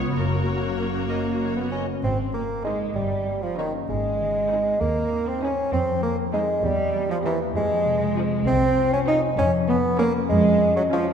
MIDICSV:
0, 0, Header, 1, 9, 480
1, 0, Start_track
1, 0, Key_signature, -4, "major"
1, 0, Tempo, 621762
1, 126, Time_signature, 6, 3, 24, 8
1, 3005, Tempo, 610998
1, 8691, End_track
2, 0, Start_track
2, 0, Title_t, "Violin section"
2, 0, Program_c, 0, 48
2, 0, Note_on_c, 0, 73, 56
2, 116, Note_off_c, 0, 73, 0
2, 133, Note_on_c, 0, 73, 48
2, 1396, Note_off_c, 0, 73, 0
2, 2051, Note_on_c, 0, 72, 51
2, 2227, Note_off_c, 0, 72, 0
2, 2767, Note_on_c, 0, 73, 50
2, 2946, Note_off_c, 0, 73, 0
2, 3491, Note_on_c, 0, 72, 52
2, 3667, Note_off_c, 0, 72, 0
2, 4200, Note_on_c, 0, 72, 53
2, 4380, Note_off_c, 0, 72, 0
2, 4930, Note_on_c, 0, 72, 59
2, 5105, Note_off_c, 0, 72, 0
2, 5640, Note_on_c, 0, 72, 62
2, 5818, Note_off_c, 0, 72, 0
2, 6368, Note_on_c, 0, 72, 65
2, 6540, Note_off_c, 0, 72, 0
2, 7077, Note_on_c, 0, 72, 71
2, 7253, Note_off_c, 0, 72, 0
2, 7798, Note_on_c, 0, 73, 68
2, 7975, Note_off_c, 0, 73, 0
2, 8532, Note_on_c, 0, 73, 69
2, 8691, Note_off_c, 0, 73, 0
2, 8691, End_track
3, 0, Start_track
3, 0, Title_t, "Violin section"
3, 0, Program_c, 1, 48
3, 0, Note_on_c, 1, 73, 75
3, 98, Note_off_c, 1, 73, 0
3, 123, Note_on_c, 1, 70, 50
3, 786, Note_off_c, 1, 70, 0
3, 837, Note_on_c, 1, 75, 51
3, 899, Note_off_c, 1, 75, 0
3, 1084, Note_on_c, 1, 73, 40
3, 1325, Note_off_c, 1, 73, 0
3, 1326, Note_on_c, 1, 75, 43
3, 1388, Note_off_c, 1, 75, 0
3, 2049, Note_on_c, 1, 68, 45
3, 2226, Note_off_c, 1, 68, 0
3, 2758, Note_on_c, 1, 70, 51
3, 2941, Note_off_c, 1, 70, 0
3, 3487, Note_on_c, 1, 68, 45
3, 3665, Note_off_c, 1, 68, 0
3, 4207, Note_on_c, 1, 68, 55
3, 4384, Note_off_c, 1, 68, 0
3, 4928, Note_on_c, 1, 68, 54
3, 5104, Note_off_c, 1, 68, 0
3, 5641, Note_on_c, 1, 70, 63
3, 5818, Note_off_c, 1, 70, 0
3, 6365, Note_on_c, 1, 68, 65
3, 6539, Note_off_c, 1, 68, 0
3, 7076, Note_on_c, 1, 68, 68
3, 7253, Note_off_c, 1, 68, 0
3, 7796, Note_on_c, 1, 68, 66
3, 7973, Note_off_c, 1, 68, 0
3, 8531, Note_on_c, 1, 68, 70
3, 8691, Note_off_c, 1, 68, 0
3, 8691, End_track
4, 0, Start_track
4, 0, Title_t, "Clarinet"
4, 0, Program_c, 2, 71
4, 120, Note_on_c, 2, 66, 59
4, 832, Note_off_c, 2, 66, 0
4, 8691, End_track
5, 0, Start_track
5, 0, Title_t, "Viola section"
5, 0, Program_c, 3, 48
5, 0, Note_on_c, 3, 59, 59
5, 0, Note_on_c, 3, 65, 55
5, 110, Note_off_c, 3, 59, 0
5, 126, Note_off_c, 3, 65, 0
5, 126, Note_on_c, 3, 66, 48
5, 127, Note_on_c, 3, 58, 51
5, 1392, Note_off_c, 3, 66, 0
5, 1419, Note_off_c, 3, 58, 0
5, 2051, Note_on_c, 3, 63, 49
5, 2227, Note_off_c, 3, 63, 0
5, 2762, Note_on_c, 3, 63, 49
5, 2943, Note_off_c, 3, 63, 0
5, 3475, Note_on_c, 3, 63, 49
5, 3658, Note_off_c, 3, 63, 0
5, 4206, Note_on_c, 3, 63, 49
5, 4383, Note_off_c, 3, 63, 0
5, 4921, Note_on_c, 3, 63, 59
5, 5100, Note_off_c, 3, 63, 0
5, 5642, Note_on_c, 3, 67, 57
5, 5819, Note_off_c, 3, 67, 0
5, 6355, Note_on_c, 3, 65, 64
5, 6533, Note_off_c, 3, 65, 0
5, 7081, Note_on_c, 3, 65, 67
5, 7255, Note_off_c, 3, 65, 0
5, 7797, Note_on_c, 3, 61, 69
5, 7974, Note_off_c, 3, 61, 0
5, 8526, Note_on_c, 3, 61, 72
5, 8691, Note_off_c, 3, 61, 0
5, 8691, End_track
6, 0, Start_track
6, 0, Title_t, "Harp"
6, 0, Program_c, 4, 46
6, 0, Note_on_c, 4, 49, 56
6, 0, Note_on_c, 4, 59, 44
6, 0, Note_on_c, 4, 61, 37
6, 0, Note_on_c, 4, 65, 41
6, 120, Note_on_c, 4, 42, 49
6, 142, Note_off_c, 4, 59, 0
6, 143, Note_off_c, 4, 49, 0
6, 143, Note_off_c, 4, 65, 0
6, 363, Note_on_c, 4, 58, 33
6, 593, Note_off_c, 4, 61, 0
6, 602, Note_on_c, 4, 61, 36
6, 845, Note_on_c, 4, 66, 37
6, 1088, Note_on_c, 4, 70, 37
6, 1316, Note_off_c, 4, 61, 0
6, 1326, Note_on_c, 4, 61, 35
6, 1567, Note_on_c, 4, 44, 45
6, 1589, Note_off_c, 4, 61, 0
6, 1590, Note_off_c, 4, 42, 0
6, 1590, Note_off_c, 4, 58, 0
6, 1590, Note_off_c, 4, 66, 0
6, 1591, Note_off_c, 4, 70, 0
6, 1806, Note_on_c, 4, 56, 36
6, 2036, Note_on_c, 4, 60, 36
6, 2039, Note_on_c, 4, 63, 39
6, 2279, Note_on_c, 4, 43, 47
6, 2299, Note_off_c, 4, 60, 0
6, 2302, Note_off_c, 4, 44, 0
6, 2303, Note_off_c, 4, 56, 0
6, 2514, Note_on_c, 4, 58, 40
6, 2755, Note_off_c, 4, 63, 0
6, 2761, Note_on_c, 4, 61, 34
6, 2764, Note_on_c, 4, 63, 40
6, 3001, Note_on_c, 4, 44, 51
6, 3020, Note_off_c, 4, 58, 0
6, 3022, Note_off_c, 4, 43, 0
6, 3024, Note_off_c, 4, 61, 0
6, 3249, Note_on_c, 4, 51, 36
6, 3486, Note_on_c, 4, 60, 44
6, 3723, Note_on_c, 4, 68, 43
6, 3960, Note_off_c, 4, 63, 0
6, 3969, Note_on_c, 4, 63, 47
6, 4203, Note_on_c, 4, 56, 41
6, 4438, Note_on_c, 4, 41, 56
6, 4460, Note_off_c, 4, 44, 0
6, 4463, Note_off_c, 4, 51, 0
6, 4667, Note_off_c, 4, 56, 0
6, 4676, Note_on_c, 4, 56, 40
6, 4905, Note_off_c, 4, 60, 0
6, 4911, Note_off_c, 4, 63, 0
6, 4914, Note_on_c, 4, 60, 43
6, 4920, Note_on_c, 4, 63, 44
6, 5156, Note_on_c, 4, 40, 58
6, 5178, Note_off_c, 4, 41, 0
6, 5178, Note_off_c, 4, 56, 0
6, 5179, Note_off_c, 4, 68, 0
6, 5180, Note_off_c, 4, 63, 0
6, 5397, Note_on_c, 4, 58, 50
6, 5626, Note_off_c, 4, 60, 0
6, 5634, Note_on_c, 4, 60, 44
6, 5640, Note_on_c, 4, 67, 50
6, 5880, Note_on_c, 4, 41, 64
6, 5895, Note_off_c, 4, 40, 0
6, 5897, Note_off_c, 4, 58, 0
6, 5898, Note_off_c, 4, 67, 0
6, 6117, Note_on_c, 4, 48, 47
6, 6348, Note_off_c, 4, 60, 0
6, 6358, Note_on_c, 4, 60, 53
6, 6596, Note_on_c, 4, 68, 54
6, 6837, Note_on_c, 4, 65, 57
6, 7075, Note_on_c, 4, 56, 52
6, 7306, Note_off_c, 4, 41, 0
6, 7315, Note_on_c, 4, 41, 68
6, 7331, Note_off_c, 4, 48, 0
6, 7332, Note_off_c, 4, 60, 0
6, 7557, Note_on_c, 4, 53, 49
6, 7795, Note_on_c, 4, 61, 59
6, 8026, Note_off_c, 4, 68, 0
6, 8035, Note_on_c, 4, 68, 59
6, 8268, Note_off_c, 4, 61, 0
6, 8277, Note_on_c, 4, 61, 57
6, 8511, Note_off_c, 4, 56, 0
6, 8521, Note_on_c, 4, 56, 51
6, 8691, Note_off_c, 4, 41, 0
6, 8691, Note_off_c, 4, 53, 0
6, 8691, Note_off_c, 4, 56, 0
6, 8691, Note_off_c, 4, 61, 0
6, 8691, Note_off_c, 4, 65, 0
6, 8691, Note_off_c, 4, 68, 0
6, 8691, End_track
7, 0, Start_track
7, 0, Title_t, "Bassoon"
7, 0, Program_c, 5, 70
7, 844, Note_on_c, 5, 58, 66
7, 1184, Note_off_c, 5, 58, 0
7, 1207, Note_on_c, 5, 59, 56
7, 1323, Note_off_c, 5, 59, 0
7, 1328, Note_on_c, 5, 61, 59
7, 1437, Note_off_c, 5, 61, 0
7, 1573, Note_on_c, 5, 60, 64
7, 1680, Note_off_c, 5, 60, 0
7, 1807, Note_on_c, 5, 58, 62
7, 2037, Note_off_c, 5, 58, 0
7, 2041, Note_on_c, 5, 56, 64
7, 2150, Note_off_c, 5, 56, 0
7, 2282, Note_on_c, 5, 55, 65
7, 2642, Note_on_c, 5, 53, 57
7, 2654, Note_off_c, 5, 55, 0
7, 2760, Note_off_c, 5, 53, 0
7, 2765, Note_on_c, 5, 51, 59
7, 2873, Note_off_c, 5, 51, 0
7, 3008, Note_on_c, 5, 56, 71
7, 3721, Note_on_c, 5, 58, 79
7, 3733, Note_off_c, 5, 56, 0
7, 4095, Note_on_c, 5, 60, 65
7, 4107, Note_off_c, 5, 58, 0
7, 4212, Note_on_c, 5, 61, 70
7, 4224, Note_off_c, 5, 60, 0
7, 4442, Note_off_c, 5, 61, 0
7, 4447, Note_on_c, 5, 60, 75
7, 4678, Note_off_c, 5, 60, 0
7, 4683, Note_on_c, 5, 58, 69
7, 4791, Note_off_c, 5, 58, 0
7, 4927, Note_on_c, 5, 56, 77
7, 5166, Note_on_c, 5, 55, 84
7, 5178, Note_off_c, 5, 56, 0
7, 5522, Note_off_c, 5, 55, 0
7, 5531, Note_on_c, 5, 53, 69
7, 5582, Note_off_c, 5, 53, 0
7, 5646, Note_on_c, 5, 52, 79
7, 5752, Note_off_c, 5, 52, 0
7, 5886, Note_on_c, 5, 56, 86
7, 6372, Note_off_c, 5, 56, 0
7, 6600, Note_on_c, 5, 60, 94
7, 6931, Note_off_c, 5, 60, 0
7, 6963, Note_on_c, 5, 61, 83
7, 7015, Note_off_c, 5, 61, 0
7, 7079, Note_on_c, 5, 63, 92
7, 7186, Note_off_c, 5, 63, 0
7, 7320, Note_on_c, 5, 61, 94
7, 7426, Note_off_c, 5, 61, 0
7, 7562, Note_on_c, 5, 59, 90
7, 7793, Note_off_c, 5, 59, 0
7, 7796, Note_on_c, 5, 58, 95
7, 7904, Note_off_c, 5, 58, 0
7, 8035, Note_on_c, 5, 56, 94
7, 8392, Note_off_c, 5, 56, 0
7, 8405, Note_on_c, 5, 54, 82
7, 8458, Note_off_c, 5, 54, 0
7, 8531, Note_on_c, 5, 53, 82
7, 8639, Note_off_c, 5, 53, 0
7, 8691, End_track
8, 0, Start_track
8, 0, Title_t, "Cello section"
8, 0, Program_c, 6, 48
8, 0, Note_on_c, 6, 37, 60
8, 125, Note_off_c, 6, 37, 0
8, 125, Note_on_c, 6, 42, 50
8, 834, Note_off_c, 6, 42, 0
8, 842, Note_on_c, 6, 58, 53
8, 1183, Note_off_c, 6, 58, 0
8, 1206, Note_on_c, 6, 59, 48
8, 1329, Note_on_c, 6, 61, 49
8, 1330, Note_off_c, 6, 59, 0
8, 1391, Note_off_c, 6, 61, 0
8, 1570, Note_on_c, 6, 60, 55
8, 1805, Note_off_c, 6, 60, 0
8, 1808, Note_on_c, 6, 58, 52
8, 1869, Note_off_c, 6, 58, 0
8, 2050, Note_on_c, 6, 56, 56
8, 2282, Note_off_c, 6, 56, 0
8, 2286, Note_on_c, 6, 55, 55
8, 2645, Note_off_c, 6, 55, 0
8, 2645, Note_on_c, 6, 53, 51
8, 2762, Note_on_c, 6, 51, 48
8, 2763, Note_off_c, 6, 53, 0
8, 2824, Note_off_c, 6, 51, 0
8, 3009, Note_on_c, 6, 56, 66
8, 3713, Note_off_c, 6, 56, 0
8, 3725, Note_on_c, 6, 58, 64
8, 4077, Note_off_c, 6, 58, 0
8, 4078, Note_on_c, 6, 60, 54
8, 4199, Note_on_c, 6, 61, 58
8, 4201, Note_off_c, 6, 60, 0
8, 4262, Note_off_c, 6, 61, 0
8, 4441, Note_on_c, 6, 60, 67
8, 4504, Note_off_c, 6, 60, 0
8, 4678, Note_on_c, 6, 58, 64
8, 4741, Note_off_c, 6, 58, 0
8, 4923, Note_on_c, 6, 56, 59
8, 4986, Note_off_c, 6, 56, 0
8, 5160, Note_on_c, 6, 55, 70
8, 5512, Note_off_c, 6, 55, 0
8, 5515, Note_on_c, 6, 53, 60
8, 5564, Note_off_c, 6, 53, 0
8, 5639, Note_on_c, 6, 52, 61
8, 5702, Note_off_c, 6, 52, 0
8, 5881, Note_on_c, 6, 56, 81
8, 6582, Note_off_c, 6, 56, 0
8, 6596, Note_on_c, 6, 60, 78
8, 6951, Note_on_c, 6, 61, 71
8, 6954, Note_off_c, 6, 60, 0
8, 7072, Note_off_c, 6, 61, 0
8, 7073, Note_on_c, 6, 63, 80
8, 7136, Note_off_c, 6, 63, 0
8, 7310, Note_on_c, 6, 61, 84
8, 7372, Note_off_c, 6, 61, 0
8, 7556, Note_on_c, 6, 59, 82
8, 7619, Note_off_c, 6, 59, 0
8, 7789, Note_on_c, 6, 58, 77
8, 7852, Note_off_c, 6, 58, 0
8, 8034, Note_on_c, 6, 56, 84
8, 8392, Note_off_c, 6, 56, 0
8, 8397, Note_on_c, 6, 54, 69
8, 8447, Note_off_c, 6, 54, 0
8, 8518, Note_on_c, 6, 53, 69
8, 8691, Note_off_c, 6, 53, 0
8, 8691, End_track
9, 0, Start_track
9, 0, Title_t, "Double bass section"
9, 0, Program_c, 7, 48
9, 0, Note_on_c, 7, 37, 55
9, 124, Note_off_c, 7, 37, 0
9, 124, Note_on_c, 7, 30, 48
9, 1391, Note_off_c, 7, 30, 0
9, 1565, Note_on_c, 7, 32, 59
9, 2145, Note_off_c, 7, 32, 0
9, 2279, Note_on_c, 7, 31, 58
9, 2864, Note_off_c, 7, 31, 0
9, 2996, Note_on_c, 7, 32, 57
9, 3582, Note_off_c, 7, 32, 0
9, 3721, Note_on_c, 7, 39, 60
9, 4302, Note_off_c, 7, 39, 0
9, 4447, Note_on_c, 7, 41, 64
9, 5024, Note_off_c, 7, 41, 0
9, 5162, Note_on_c, 7, 40, 69
9, 5740, Note_off_c, 7, 40, 0
9, 5880, Note_on_c, 7, 41, 75
9, 6458, Note_off_c, 7, 41, 0
9, 6606, Note_on_c, 7, 36, 75
9, 7178, Note_off_c, 7, 36, 0
9, 7314, Note_on_c, 7, 41, 82
9, 7895, Note_off_c, 7, 41, 0
9, 8036, Note_on_c, 7, 41, 77
9, 8626, Note_off_c, 7, 41, 0
9, 8691, End_track
0, 0, End_of_file